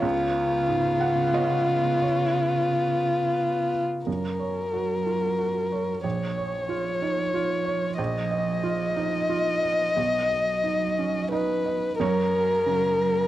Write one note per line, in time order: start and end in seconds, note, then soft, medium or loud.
0.00 1.98 C#2 medium
0.00 3.82 B3 medium
0.00 3.82 F4 medium
0.00 0.98 C#5 medium
0.04 3.87 C#3 medium
0.68 1.75 G#2 soft
1.00 1.32 F#5 medium
1.33 4.02 B3 soft
1.33 4.02 F4 soft
1.33 2.01 C#5 soft
1.33 1.98 D#5 medium
2.02 3.69 C#5 medium
4.07 6.00 F#2 soft
4.07 6.01 F#3 soft
4.07 6.00 A#4 soft
4.39 4.93 C#5 soft
4.73 5.26 F#4 soft
5.06 5.39 F4 soft
5.38 5.91 F#4 soft
5.72 6.04 C#5 soft
6.04 7.94 A#1 soft
6.04 9.93 F3 soft
6.04 7.95 C#5 soft
6.38 6.89 C#5 soft
6.69 7.21 F4 soft
7.02 7.34 D#4 soft
7.34 7.86 F4 soft
7.65 7.98 C#5 soft
7.98 9.93 A#1 medium
7.98 11.28 D#5 medium
8.31 8.84 D#5 soft
8.64 9.17 F4 soft
8.96 9.30 D#4 soft
9.30 9.83 F4 soft
9.63 9.97 D#5 soft
9.97 11.96 B1 soft
9.97 11.76 F#3 soft
10.30 10.85 D#5 soft
10.64 11.18 D#4 soft
10.99 11.32 C#4 soft
11.32 11.86 D#4 soft
11.32 11.95 B4 soft
11.32 11.64 D#5 soft
11.66 11.99 D#5 soft
11.98 13.28 F#2 medium
11.98 12.33 F#3 soft
11.98 13.28 A#4 medium
11.98 12.32 A#4 soft
11.98 13.28 C#5 medium
12.34 12.66 F#3 soft
12.34 12.66 A#4 medium
12.66 13.28 C#3 soft
12.66 12.99 F#3 soft
12.66 12.99 A#4 soft
13.00 13.28 F#3 soft
13.00 13.28 A#4 soft